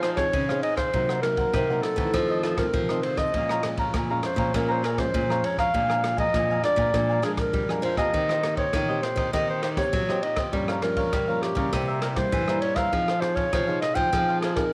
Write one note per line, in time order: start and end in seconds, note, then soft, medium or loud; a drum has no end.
0.00 0.25 F3 loud
0.00 0.31 F3 medium
0.00 0.17 D#4 medium
0.00 0.18 G#4 medium
0.00 0.09 C5 medium
0.00 cross-stick medium
0.00 ride soft
0.04 0.18 C5 medium
0.04 0.18 F5 medium
0.16 0.44 C4 medium
0.16 0.44 D#4 medium
0.16 0.44 G#4 medium
0.16 0.59 C#5 medium
0.16 muted cavaquinho stroke soft
0.16 kick medium
0.16 cross-stick medium
0.16 ride soft
0.33 0.59 C#3 medium
0.33 kick medium
0.33 ride soft
0.49 0.90 C4 medium
0.49 0.90 D#4 medium
0.49 0.61 G#4 soft
0.49 0.90 G#4 medium
0.49 0.62 C5 medium
0.49 0.63 F5 medium
0.49 cross-stick medium
0.62 0.77 D#4 soft
0.62 0.77 G#4 medium
0.62 0.76 C5 soft
0.62 0.76 D#5 medium
0.62 0.75 F5 soft
0.62 ride medium
0.76 0.93 G#4 medium
0.76 1.20 C5 medium
0.76 0.92 C5 medium
0.76 0.92 F5 medium
0.76 kick medium
0.76 cross-stick medium
0.76 ride soft
0.93 1.45 C3 medium
0.93 1.51 C3 medium
0.93 1.19 F#3 medium
0.93 1.20 A#3 medium
0.93 1.08 D#4 soft
0.93 1.20 D#4 medium
0.93 1.08 A#4 soft
0.93 1.08 C5 soft
0.93 1.08 F#5 soft
0.93 kick medium
0.93 ride soft
1.09 1.24 A#4 medium
1.09 1.24 C5 medium
1.09 1.23 F#5 medium
1.09 cross-stick medium
1.22 1.64 F#3 soft
1.22 1.64 A#3 medium
1.22 1.64 D#4 medium
1.22 1.84 A#4 medium
1.22 muted cavaquinho stroke soft
1.22 cross-stick medium
1.22 ride soft
1.37 1.53 A#4 soft
1.37 1.53 C5 medium
1.37 1.52 F#5 medium
1.37 kick medium
1.37 ride soft
1.53 1.79 C3 medium
1.53 2.11 C3 soft
1.53 1.68 D#4 medium
1.53 1.69 A#4 soft
1.53 1.69 C5 medium
1.53 1.69 F#5 medium
1.53 kick medium
1.53 cross-stick medium
1.53 ride soft
1.69 1.94 F#3 medium
1.69 1.95 A#3 medium
1.69 1.95 D#4 medium
1.69 1.99 A#4 medium
1.69 1.98 C5 medium
1.69 1.97 F#5 medium
1.82 2.43 A4 medium
1.82 cross-stick medium
1.82 ride soft
1.96 2.54 D#3 medium
1.96 2.10 E3 medium
1.96 2.54 A3 medium
1.96 2.54 C4 medium
1.96 2.13 C5 medium
1.96 2.12 F#5 medium
1.96 kick medium
1.96 ride soft
2.00 2.13 A#4 medium
2.13 2.71 F2 medium
2.13 2.65 F3 loud
2.13 2.27 F4 soft
2.13 2.28 A4 soft
2.13 2.28 C5 medium
2.13 2.29 D#5 soft
2.13 kick medium
2.13 cross-stick medium
2.13 ride soft
2.30 2.43 A4 medium
2.30 2.44 C5 medium
2.30 2.43 D#5 medium
2.43 2.57 F4 medium
2.43 2.57 A4 medium
2.43 2.58 A4 medium
2.43 2.57 C5 medium
2.43 2.58 D#5 medium
2.43 cross-stick medium
2.43 ride soft
2.57 2.84 D#3 medium
2.57 2.84 A3 medium
2.57 2.84 C4 medium
2.57 3.04 A#4 medium
2.57 muted cavaquinho stroke soft
2.57 kick medium
2.57 cross-stick medium
2.57 ride soft
2.73 3.31 C3 medium
2.73 2.99 F3 medium
2.73 kick medium
2.73 ride soft
2.89 3.30 D#3 medium
2.89 3.30 A3 medium
2.89 3.30 C4 medium
2.89 3.04 A4 soft
2.89 3.04 C5 medium
2.89 3.03 D#5 medium
2.89 cross-stick medium
3.03 3.18 F4 soft
3.03 3.18 A4 soft
3.03 3.19 C5 medium
3.03 3.18 D#5 medium
3.03 ride soft
3.17 3.34 A4 medium
3.17 3.33 C5 medium
3.17 3.78 D#5 medium
3.17 3.33 D#5 medium
3.17 kick medium
3.17 cross-stick medium
3.17 ride soft
3.34 3.85 A#2 medium
3.34 3.92 A#2 soft
3.34 3.60 F3 medium
3.34 3.60 G#3 medium
3.34 3.60 C#4 medium
3.34 3.49 G#4 soft
3.34 3.49 C#5 soft
3.34 3.49 F5 medium
3.34 3.49 A#5 soft
3.34 kick medium
3.34 ride soft
3.49 3.64 C#5 soft
3.49 3.64 F5 medium
3.49 3.64 A#5 medium
3.49 cross-stick medium
3.63 3.92 F3 soft
3.63 3.93 G#3 medium
3.63 3.93 C#4 medium
3.63 muted cavaquinho stroke soft
3.63 cross-stick medium
3.63 ride soft
3.77 3.94 C#5 medium
3.77 3.93 F5 medium
3.77 3.93 A#5 medium
3.77 kick medium
3.77 ride soft
3.94 4.52 F2 medium
3.94 4.19 A#2 medium
3.94 4.08 G#4 soft
3.94 4.08 C#5 soft
3.94 4.09 F5 medium
3.94 4.09 A#5 soft
3.94 kick medium
3.94 cross-stick medium
3.94 ride soft
4.10 4.50 F3 medium
4.10 4.50 G#3 medium
4.10 4.50 C#4 medium
4.10 4.39 C#5 medium
4.10 4.38 F5 medium
4.10 4.37 A#5 medium
4.23 4.57 C5 medium
4.23 cross-stick medium
4.23 ride soft
4.36 4.50 A#2 medium
4.36 4.53 F5 medium
4.36 4.52 A#5 medium
4.36 kick medium
4.36 ride soft
4.40 4.53 C#5 medium
4.54 5.11 A#2 soft
4.54 5.05 A#2 loud
4.54 4.82 F3 soft
4.54 4.83 G#3 medium
4.54 4.83 C#4 medium
4.54 4.68 G#4 soft
4.54 4.73 A#4 medium
4.54 4.68 C#5 soft
4.54 4.68 F5 soft
4.54 4.67 A#5 medium
4.54 kick medium
4.54 cross-stick medium
4.54 ride soft
4.68 4.86 C5 medium
4.68 4.82 C#5 soft
4.68 4.82 F5 medium
4.68 4.83 A#5 medium
4.82 4.97 G#4 medium
4.82 5.01 A#4 medium
4.82 4.97 C#5 medium
4.82 4.97 F5 medium
4.82 4.97 A#5 medium
4.82 cross-stick medium
4.82 ride soft
4.98 5.24 F3 medium
4.98 5.24 G#3 medium
4.98 5.24 C#4 medium
4.98 5.47 C5 medium
4.98 muted cavaquinho stroke soft
4.98 kick medium
4.98 cross-stick medium
4.98 ride soft
5.14 5.71 F2 medium
5.14 5.40 A#2 medium
5.14 kick medium
5.14 ride soft
5.29 5.69 F3 medium
5.29 5.69 G#3 medium
5.29 5.70 C#4 medium
5.29 5.43 C#5 medium
5.29 5.44 F5 medium
5.29 5.43 A#5 medium
5.29 cross-stick medium
5.44 5.58 G#4 soft
5.44 5.58 C#5 medium
5.44 5.59 C#5 medium
5.44 5.58 F5 medium
5.44 5.57 A#5 soft
5.44 ride medium
5.58 5.73 C#5 medium
5.58 5.73 F5 medium
5.58 6.15 F5 medium
5.58 5.72 A#5 medium
5.58 kick medium
5.58 cross-stick medium
5.58 ride soft
5.74 6.31 A#2 soft
5.74 6.25 A#2 medium
5.74 6.14 F3 medium
5.74 6.14 G#3 medium
5.74 5.88 D4 soft
5.74 6.15 D4 medium
5.74 5.88 A#4 soft
5.74 5.88 F5 soft
5.74 5.87 G#5 medium
5.74 kick medium
5.74 ride soft
5.88 6.03 A#4 medium
5.88 6.03 F5 medium
5.88 6.03 G#5 medium
5.88 cross-stick medium
6.04 cross-stick medium
6.04 ride soft
6.17 6.58 F3 medium
6.17 6.59 G#3 medium
6.17 6.33 A#4 medium
6.17 6.61 D#5 medium
6.17 6.33 F5 medium
6.17 6.32 G#5 medium
6.17 kick medium
6.17 ride soft
6.34 6.91 F2 soft
6.34 6.59 A#2 medium
6.34 6.48 D4 soft
6.34 6.48 A#4 soft
6.34 6.49 F5 soft
6.34 6.49 G#5 medium
6.34 kick medium
6.34 cross-stick medium
6.34 ride soft
6.50 6.79 A#4 medium
6.50 6.78 F5 medium
6.50 6.77 G#5 medium
6.63 6.89 F3 medium
6.63 6.89 G#3 medium
6.63 6.89 D4 medium
6.63 7.20 D5 medium
6.63 cross-stick medium
6.63 ride soft
6.76 6.90 A#2 medium
6.76 6.93 A#4 medium
6.76 6.93 F5 medium
6.76 6.92 G#5 medium
6.76 kick medium
6.76 ride soft
6.93 7.51 A#2 medium
6.93 7.19 A#2 loud
6.93 7.19 F3 medium
6.93 7.19 G#3 medium
6.93 7.08 D4 soft
6.93 7.19 D4 medium
6.93 7.08 A#4 soft
6.93 7.08 F5 medium
6.93 7.08 G#5 medium
6.93 kick medium
6.93 cross-stick medium
6.93 ride soft
7.09 7.22 A#4 medium
7.09 7.23 F5 medium
7.09 7.23 G#5 medium
7.22 7.63 F3 medium
7.22 7.50 G#3 medium
7.22 7.64 G#3 soft
7.22 7.37 D4 medium
7.22 7.64 D4 medium
7.22 7.31 G#4 medium
7.22 7.38 A#4 medium
7.22 7.38 F5 medium
7.22 7.38 G#5 medium
7.22 cross-stick medium
7.22 ride soft
7.37 7.80 A#4 medium
7.37 muted cavaquinho stroke soft
7.37 kick medium
7.37 cross-stick medium
7.37 ride soft
7.53 8.11 F2 medium
7.53 7.81 G3 medium
7.53 kick medium
7.53 ride soft
7.69 7.94 F3 medium
7.69 7.94 G#3 medium
7.69 7.94 D4 medium
7.69 7.83 A#4 medium
7.69 7.84 F5 medium
7.69 7.83 G#5 medium
7.69 cross-stick medium
7.82 8.10 F3 medium
7.82 7.98 D4 soft
7.82 7.98 A#4 medium
7.82 7.97 C5 medium
7.82 7.98 F5 medium
7.82 7.97 G#5 soft
7.82 ride soft
7.97 8.42 A#3 medium
7.97 8.43 C4 medium
7.97 8.43 G4 medium
7.97 8.13 A#4 medium
7.97 8.54 D#5 medium
7.97 8.13 F5 medium
7.97 8.12 G#5 medium
7.97 kick medium
7.97 cross-stick medium
7.97 ride soft
8.14 8.65 D#3 medium
8.14 8.71 D#3 soft
8.14 8.28 D#4 soft
8.14 8.28 G4 soft
8.14 8.29 C5 soft
8.14 8.28 D#5 soft
8.14 kick medium
8.14 ride soft
8.29 8.42 G4 medium
8.29 8.43 C5 medium
8.29 8.43 D#5 medium
8.29 cross-stick medium
8.43 8.84 A#3 medium
8.43 8.84 C4 soft
8.43 8.84 G4 medium
8.43 muted cavaquinho stroke soft
8.43 cross-stick medium
8.43 ride soft
8.57 8.73 G4 medium
8.57 8.72 C5 medium
8.57 9.04 C#5 medium
8.57 8.72 D#5 medium
8.57 kick medium
8.57 ride soft
8.73 9.31 A#2 soft
8.73 8.99 D#3 medium
8.73 8.88 D#4 soft
8.73 8.88 G4 soft
8.73 8.88 C5 soft
8.73 8.87 D#5 medium
8.73 kick medium
8.73 cross-stick medium
8.73 ride soft
8.88 9.29 A#3 medium
8.88 9.29 C4 medium
8.88 9.29 G4 medium
8.88 9.18 G4 soft
8.88 9.17 C5 medium
8.88 9.16 D#5 medium
9.02 9.32 C5 medium
9.02 cross-stick medium
9.02 ride soft
9.16 9.30 D#3 medium
9.16 9.32 G4 soft
9.16 9.32 C5 medium
9.16 9.32 D#5 medium
9.16 kick medium
9.16 ride soft
9.32 9.84 D#3 loud
9.32 9.90 D#3 medium
9.32 9.62 A#3 medium
9.32 9.62 C4 medium
9.32 9.47 D#4 soft
9.32 9.47 G4 soft
9.32 9.62 G4 medium
9.32 9.47 C5 soft
9.32 9.47 D#5 medium
9.32 kick medium
9.32 cross-stick medium
9.32 ride soft
9.48 9.62 G4 soft
9.48 9.62 C5 medium
9.48 9.62 D#5 medium
9.62 9.76 D#4 medium
9.62 9.77 G4 medium
9.62 9.70 C5 medium
9.62 9.77 C5 medium
9.62 9.77 D#5 medium
9.62 cross-stick medium
9.62 ride soft
9.77 10.03 A#3 medium
9.77 10.03 C4 medium
9.77 10.03 G4 medium
9.77 10.24 C#5 medium
9.77 muted cavaquinho stroke soft
9.77 kick medium
9.77 cross-stick medium
9.77 ride medium
9.93 10.50 A#2 medium
9.93 10.19 F#3 medium
9.93 kick medium
9.93 ride soft
10.08 10.49 A#3 medium
10.08 10.49 C4 medium
10.08 10.49 G4 medium
10.08 10.23 G4 medium
10.08 10.23 C5 medium
10.08 10.23 D#5 medium
10.08 cross-stick medium
10.22 10.37 D#4 soft
10.22 10.38 G4 soft
10.22 10.37 C5 soft
10.22 10.38 D#5 medium
10.22 10.36 D#5 soft
10.22 ride medium
10.36 10.52 G4 medium
10.36 10.52 C5 medium
10.36 10.52 D#5 medium
10.36 kick medium
10.36 cross-stick medium
10.36 ride medium
10.53 11.10 G2 medium
10.53 10.78 F3 medium
10.53 11.04 G3 medium
10.53 10.79 A#3 soft
10.53 10.79 C#4 medium
10.53 10.67 G4 soft
10.53 10.67 A#4 soft
10.53 10.68 C#5 soft
10.53 10.67 F5 soft
10.53 kick medium
10.53 ride soft
10.68 10.82 A#4 medium
10.68 10.82 C#5 medium
10.68 10.82 F5 medium
10.68 cross-stick medium
10.82 11.11 F3 medium
10.82 11.11 A#3 soft
10.82 11.11 C#4 medium
10.82 11.44 A#4 medium
10.82 cross-stick medium
10.82 ride soft
10.97 11.12 A#4 soft
10.97 11.12 C#5 medium
10.97 11.11 F5 medium
10.97 kick medium
10.97 ride soft
11.13 11.70 G2 soft
11.13 11.39 G3 medium
11.13 11.27 G4 soft
11.13 11.27 A#4 soft
11.13 11.27 C#5 soft
11.13 11.27 F5 medium
11.13 kick medium
11.13 cross-stick medium
11.13 ride soft
11.28 11.54 F3 medium
11.28 11.54 A#3 medium
11.28 11.54 C#4 medium
11.28 11.57 A#4 medium
11.28 11.56 C#5 medium
11.28 11.55 F5 medium
11.42 12.01 G4 medium
11.42 cross-stick medium
11.42 ride soft
11.55 11.69 C#3 medium
11.55 12.13 G3 medium
11.55 12.13 A#3 medium
11.55 12.13 E4 medium
11.55 11.72 A#4 medium
11.55 11.72 C#5 medium
11.55 11.71 F5 medium
11.55 kick medium
11.55 ride soft
11.72 12.30 C3 medium
11.72 12.24 C3 loud
11.72 11.86 E4 soft
11.72 11.87 A#4 soft
11.72 11.87 C5 medium
11.72 11.87 E5 medium
11.72 kick medium
11.72 cross-stick medium
11.72 ride soft
11.88 12.02 A#4 medium
11.88 12.02 C5 medium
11.88 12.02 E5 medium
12.01 12.16 E4 medium
12.01 12.09 A#4 medium
12.01 12.16 A#4 medium
12.01 12.16 C5 medium
12.01 12.16 E5 medium
12.01 cross-stick medium
12.01 ride soft
12.16 12.42 G3 medium
12.16 12.43 A#3 medium
12.16 12.43 E4 medium
12.16 12.62 C5 medium
12.16 muted cavaquinho stroke soft
12.16 kick medium
12.16 cross-stick medium
12.16 ride soft
12.32 12.90 G2 medium
12.32 12.58 E3 loud
12.32 kick medium
12.32 ride soft
12.48 12.88 G3 medium
12.48 12.89 A#3 medium
12.48 12.89 E4 medium
12.48 12.62 A#4 soft
12.48 12.62 C5 medium
12.48 12.62 E5 medium
12.48 cross-stick medium
12.60 12.77 E4 soft
12.60 12.77 A#4 soft
12.60 12.76 C5 medium
12.60 12.77 C#5 medium
12.60 ride soft
12.64 12.75 E5 medium
12.76 12.92 A#4 medium
12.76 12.91 C5 medium
12.76 12.91 E5 medium
12.76 13.22 F5 medium
12.76 kick medium
12.76 cross-stick medium
12.76 ride soft
12.93 13.44 F3 medium
12.93 13.50 F3 medium
12.93 13.11 C4 medium
12.93 13.07 D#4 soft
12.93 13.11 D#4 medium
12.93 13.07 G#4 soft
12.93 13.11 G#4 medium
12.93 13.07 C5 soft
12.93 13.06 F5 soft
12.93 kick medium
12.93 ride soft
13.08 13.21 G#4 medium
13.08 13.22 C5 medium
13.08 13.22 F5 medium
13.08 cross-stick medium
13.20 13.50 C4 medium
13.20 13.51 D#4 medium
13.20 13.51 G#4 medium
13.20 13.36 C5 medium
13.20 muted cavaquinho stroke soft
13.20 cross-stick medium
13.20 ride soft
13.35 13.52 G#4 soft
13.35 13.51 C5 medium
13.35 13.81 C#5 medium
13.35 13.51 F5 medium
13.35 kick medium
13.35 ride soft
13.52 14.10 C3 soft
13.52 13.78 F3 medium
13.52 13.66 D#4 soft
13.52 13.67 G#4 soft
13.52 13.67 C5 soft
13.52 13.66 F5 soft
13.52 kick medium
13.52 cross-stick medium
13.52 ride soft
13.67 14.08 C4 medium
13.67 14.08 D#4 medium
13.67 14.08 G#4 medium
13.67 13.97 G#4 medium
13.67 13.96 C5 medium
13.67 13.95 F5 medium
13.81 13.97 D#5 medium
13.81 cross-stick medium
13.81 ride soft
13.95 14.09 F3 medium
13.95 14.12 G#4 medium
13.95 14.11 C5 medium
13.95 14.11 F5 medium
13.95 14.39 G5 loud
13.95 kick medium
13.95 ride soft
14.13 14.64 F3 medium
14.13 14.70 F3 soft
14.13 14.53 C4 medium
14.13 14.27 D#4 soft
14.13 14.53 D#4 soft
14.13 14.27 G#4 medium
14.13 14.53 G#4 medium
14.13 14.27 C5 soft
14.13 14.27 F5 soft
14.13 kick medium
14.13 cross-stick medium
14.13 ride soft
14.28 14.42 G#4 medium
14.28 14.43 C5 medium
14.28 14.42 F5 medium
14.40 14.56 D#4 medium
14.40 14.54 G#4 medium
14.40 14.56 G#4 medium
14.40 cross-stick medium
14.40 ride soft
14.44 14.57 C5 medium
14.44 14.57 F5 medium
14.55 14.73 C4 medium
14.55 14.73 D#4 medium
14.55 14.73 G#4 medium
14.55 14.73 A#4 medium
14.55 kick medium
14.55 cross-stick medium
14.55 ride medium